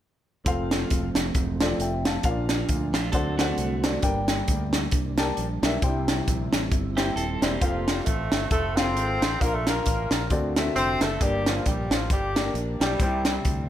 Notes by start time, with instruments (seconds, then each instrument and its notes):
0.45 fingered electric bass F1, tonewheel organ F3 A3 C4, grand piano C4 F4 A4 F5, kick, closed hi-hat
0.71 snare, closed hi-hat
0.90 fingered electric bass E1, kick, closed hi-hat
1.15 fingered electric bass F1, snare, closed hi-hat
1.35 fingered electric bass E1, kick, closed hi-hat
1.60 grand piano C4 F4 A4 D5, snare, closed hi-hat
1.78 fingered electric bass F1, grand piano E5 G5, closed hi-hat
2.05 grand piano F5 A5, snare, closed hi-hat
2.23 fingered electric bass A#1, grand piano A#2 C#4 F4 A#4 F5, tonewheel organ A#3 D4, kick, closed hi-hat
2.30 grand piano D4
2.49 snare, closed hi-hat
2.69 fingered electric bass D2, kick, closed hi-hat
2.93 fingered electric bass A#1, clean electric guitar A3 F4, snare, closed hi-hat
3.12 fingered electric bass D2, tonewheel organ D3 F#3 A3 C4 F#4, grand piano D3 D4 A4 C5 F#5, clean electric guitar C4 A4, kick, closed hi-hat
3.38 clean electric guitar A3 F#4, grand piano D4 A4 C5 F#5, snare, closed hi-hat
3.57 fingered electric bass C2, closed hi-hat
3.84 grand piano D4 A4 C5 D5, snare, closed hi-hat
4.02 fingered electric bass G1, grand piano G2 D4 G4 A#4 G5, tonewheel organ G3 A#3 D4, kick, closed hi-hat
4.28 snare, closed hi-hat
4.48 fingered electric bass D2, kick, closed hi-hat
4.73 snare, closed hi-hat
4.91 fingered electric bass C2, kick, closed hi-hat
5.18 grand piano D4 G4 A#4 A5, snare, closed hi-hat
5.37 fingered electric bass A#1, closed hi-hat
5.62 fingered electric bass B1, grand piano D4 G4 A#4 E5, snare, closed hi-hat
5.81 fingered electric bass C2, grand piano C3 D4 G4 C5 G5, tonewheel organ G3 C4 E4, kick, closed hi-hat
5.88 grand piano E4
6.08 snare, closed hi-hat
6.28 fingered electric bass A#1, kick, closed hi-hat
6.52 fingered electric bass A1, snare, closed hi-hat
6.71 fingered electric bass G1, kick, closed hi-hat
6.96 clean electric guitar A#3 G4, grand piano E4 G4 C5 G5, snare, closed hi-hat
7.16 fingered electric bass D#1, clean electric guitar C4 A4, closed hi-hat
7.42 fingered electric bass E1, clean electric guitar A#3 G4, grand piano E4 G4 C5 D5, snare, closed hi-hat
7.61 fingered electric bass F1, horn section F3 A3 C4 F4, tenor saxophone F3, grand piano C4 F4 A4 F5, kick, closed hi-hat
7.88 tenor saxophone G3, snare, closed hi-hat
8.06 fingered electric bass A1, tenor saxophone A3, horn section A3 C4 F4 A4, kick, closed hi-hat
8.32 fingered electric bass G1, snare, closed hi-hat
8.50 fingered electric bass F1, horn section A3 C4 F4 A4, tenor saxophone A3, kick, closed hi-hat
8.75 horn section C4 F4 A4 C5, tenor saxophone C4, grand piano C4 F4 G4 F5, snare, closed hi-hat
8.82 grand piano A4
8.96 fingered electric bass G#1, closed hi-hat
9.21 fingered electric bass A1, snare, closed hi-hat
9.40 fingered electric bass A#1, grand piano A#2 D4 F4 A#4 F5, horn section A#3 D4 F4 A#4, tenor saxophone A#3, kick, closed hi-hat
9.54 horn section A3 A4, tenor saxophone A3
9.67 horn section A#3 D4 F4 A#4, tenor saxophone A#3, snare, closed hi-hat
9.86 fingered electric bass A1, kick, closed hi-hat
10.11 fingered electric bass A#1, snare, closed hi-hat
10.30 fingered electric bass D2, grand piano D3 C4 F#4 A4 D5, kick, closed hi-hat
10.56 grand piano C4 F#4 A4 E5, snare, closed hi-hat
10.76 fingered electric bass F1, tenor saxophone C4, horn section C4 C5, closed hi-hat
11.00 fingered electric bass F#1, tenor saxophone A3, horn section A3 A4, snare, closed hi-hat
11.21 fingered electric bass G1, grand piano G2 A#3 D4 G4 D5, horn section G3 A#3 D4 G4, tenor saxophone G3, kick, closed hi-hat
11.46 tenor saxophone F3, horn section F3 F4, snare, closed hi-hat
11.66 fingered electric bass A#1, tenor saxophone G3, horn section G3 G4, kick, closed hi-hat
11.90 fingered electric bass A1, horn section F3 F4, tenor saxophone F3, snare, closed hi-hat
12.10 fingered electric bass G1, tenor saxophone G3, horn section G3 A#3 D4 G4, kick, closed hi-hat
12.35 grand piano A3 D4 G4 D5, snare, closed hi-hat
12.41 grand piano A#3
12.54 fingered electric bass A#1, closed hi-hat
12.80 fingered electric bass B1, tenor saxophone G3, horn section G3 C4 E4 G4, snare, closed hi-hat
12.99 fingered electric bass C2, grand piano C3 G3 C4 E4 C5, kick, closed hi-hat
13.25 snare, closed hi-hat
13.45 fingered electric bass D2, kick, closed hi-hat